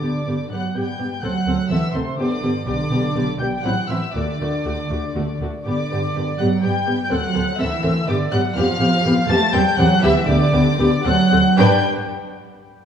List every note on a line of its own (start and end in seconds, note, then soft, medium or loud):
0.00 0.09 G2 medium
0.00 0.46 D3 medium
0.00 0.10 B3 soft
0.00 0.10 G4 soft
0.00 0.46 D5 medium
0.00 0.46 D6 medium
0.25 0.33 G2 medium
0.25 0.35 B3 soft
0.25 0.35 G4 soft
0.49 0.57 G2 soft
0.49 0.75 F#3 medium
0.49 0.60 B3 soft
0.49 0.60 G4 soft
0.49 0.75 F#5 medium
0.49 0.74 F#6 medium
0.74 0.82 G2 soft
0.74 1.22 G3 medium
0.74 0.83 B3 soft
0.74 0.83 G4 soft
0.74 1.23 G5 medium
0.74 1.23 G6 medium
0.98 1.06 G2 medium
0.98 1.06 B3 soft
0.98 1.07 G4 soft
1.22 1.30 D2 medium
1.22 1.69 F#3 medium
1.22 1.31 C4 medium
1.22 1.32 A4 medium
1.22 1.70 F#5 medium
1.22 1.70 F#6 medium
1.45 1.53 D2 medium
1.45 1.55 C4 medium
1.45 1.54 A4 medium
1.69 1.77 D2 medium
1.69 1.94 E3 medium
1.69 1.79 C4 medium
1.69 1.79 A4 medium
1.69 1.95 E5 medium
1.69 1.93 E6 medium
1.93 2.01 D2 medium
1.93 2.18 C3 medium
1.93 2.03 C4 medium
1.93 2.03 A4 medium
1.93 2.18 C5 medium
1.93 2.18 C6 medium
2.18 2.26 G1 medium
2.18 2.65 D3 medium
2.18 2.27 B3 medium
2.18 2.27 G4 medium
2.18 2.66 D5 medium
2.18 2.64 D6 medium
2.42 2.50 G1 medium
2.42 2.51 B3 medium
2.42 2.51 G4 medium
2.65 2.74 B1 medium
2.65 3.39 D3 medium
2.65 2.75 B3 medium
2.65 2.75 G4 medium
2.65 3.39 D5 medium
2.65 3.38 D6 loud
2.90 2.98 B1 medium
2.90 3.00 B3 medium
2.90 2.99 G4 medium
3.15 3.23 B1 medium
3.15 3.24 B3 medium
3.15 3.24 G4 medium
3.39 3.47 B1 medium
3.39 3.48 G3 medium
3.39 3.49 B3 medium
3.39 3.49 G4 medium
3.39 3.65 G5 medium
3.39 3.47 G6 medium
3.63 3.72 A1 medium
3.63 3.72 F#3 medium
3.63 3.73 C4 medium
3.63 3.73 E4 medium
3.63 3.89 F#5 medium
3.63 3.89 F#6 medium
3.89 3.97 A1 medium
3.89 3.97 E3 medium
3.89 3.98 C4 medium
3.89 3.98 E4 medium
3.89 4.15 E5 medium
3.89 4.15 E6 medium
4.14 4.22 D2 medium
4.14 5.38 D3 medium
4.14 4.24 A3 medium
4.14 4.24 F#4 medium
4.14 5.38 D5 medium
4.14 5.41 D6 medium
4.40 4.48 D2 medium
4.40 4.49 A3 soft
4.40 4.49 F#4 medium
4.65 4.73 D2 medium
4.65 4.74 A3 soft
4.65 4.74 F#4 medium
4.90 4.98 D2 medium
4.90 4.99 A3 medium
4.90 4.99 F#4 soft
5.15 5.23 D2 medium
5.15 5.24 A3 medium
5.15 5.24 F#4 medium
5.41 5.49 D2 medium
5.41 5.50 A3 soft
5.41 5.50 F#4 soft
5.65 5.73 G2 medium
5.65 6.36 D3 medium
5.65 5.74 B3 medium
5.65 5.75 G4 medium
5.65 6.36 D5 medium
5.65 6.36 D6 medium
5.90 5.98 G2 medium
5.90 6.00 B3 medium
5.90 6.00 G4 medium
6.15 6.23 G2 medium
6.15 6.24 B3 medium
6.15 6.24 G4 medium
6.38 6.48 G2 medium
6.38 6.64 F#3 medium
6.38 6.47 B3 medium
6.38 6.47 G4 medium
6.38 6.64 F#5 medium
6.38 6.46 F#6 medium
6.62 6.71 G2 medium
6.62 7.12 G3 medium
6.62 6.71 B3 medium
6.62 6.71 G4 medium
6.62 7.11 G5 medium
6.62 7.03 G6 medium
6.87 6.95 G2 medium
6.87 6.95 B3 medium
6.87 6.95 G4 medium
7.04 7.12 G6 medium
7.11 7.20 D2 medium
7.11 7.60 F#3 medium
7.11 7.19 C4 medium
7.11 7.19 A4 medium
7.11 7.61 F#5 medium
7.11 7.60 F#6 loud
7.35 7.43 D2 medium
7.35 7.43 C4 medium
7.35 7.43 A4 medium
7.58 7.67 D2 medium
7.58 8.07 E3 medium
7.58 7.66 C4 medium
7.58 7.66 A4 medium
7.58 8.08 E5 medium
7.58 8.07 E6 loud
7.83 7.91 D2 medium
7.83 7.91 C4 medium
7.83 7.91 A4 medium
8.07 8.15 G2 medium
8.07 8.31 D3 medium
8.07 8.15 B3 medium
8.07 8.15 G4 medium
8.07 8.32 D5 medium
8.07 8.16 D6 loud
8.30 8.39 G2 medium
8.30 8.39 F#3 medium
8.30 8.40 B3 medium
8.30 8.40 G4 medium
8.30 8.55 F#5 loud
8.30 8.40 F#6 loud
8.55 8.63 F2 medium
8.55 9.28 F3 loud
8.55 8.64 B3 medium
8.55 8.64 G4 medium
8.55 9.29 F5 loud
8.55 9.28 F6 loud
8.80 8.88 F2 medium
8.80 8.88 B3 medium
8.80 8.88 G4 medium
9.05 9.13 F2 loud
9.05 9.13 B3 medium
9.05 9.13 G4 medium
9.28 9.36 F2 medium
9.28 9.53 A3 loud
9.28 9.38 B3 medium
9.28 9.38 G4 medium
9.28 9.54 A5 loud
9.28 9.53 A6 loud
9.53 9.61 E2 medium
9.53 9.78 G3 medium
9.53 9.61 C4 loud
9.53 9.61 G4 medium
9.53 9.78 G5 loud
9.53 9.78 G6 loud
9.77 9.85 E2 loud
9.77 10.03 F#3 loud
9.77 9.86 C4 medium
9.77 9.86 G4 medium
9.77 10.03 F#5 loud
9.77 10.03 F#6 loud
10.02 10.10 D2 loud
10.02 10.28 E3 loud
10.02 10.11 B3 medium
10.02 10.10 G4 loud
10.02 10.27 E5 loud
10.02 10.11 E6 loud
10.27 10.36 D2 loud
10.27 11.04 D3 loud
10.27 10.36 B3 medium
10.27 10.36 G4 medium
10.27 11.03 D5 loud
10.27 11.03 D6 loud
10.52 10.60 D2 medium
10.52 10.61 B3 medium
10.52 10.61 G4 medium
10.78 10.86 D2 medium
10.78 10.87 B3 medium
10.78 10.87 G4 medium
11.04 11.13 D2 medium
11.04 11.56 F#3 medium
11.04 11.13 C4 medium
11.04 11.13 A4 medium
11.04 11.57 F#5 loud
11.04 11.56 F#6 loud
11.32 11.40 D2 medium
11.32 11.40 C4 medium
11.32 11.40 A4 medium
11.57 11.86 G2 loud
11.57 11.86 G3 loud
11.57 11.85 D4 loud
11.57 11.86 B4 medium
11.57 11.86 G5 loud
11.57 11.86 G6 loud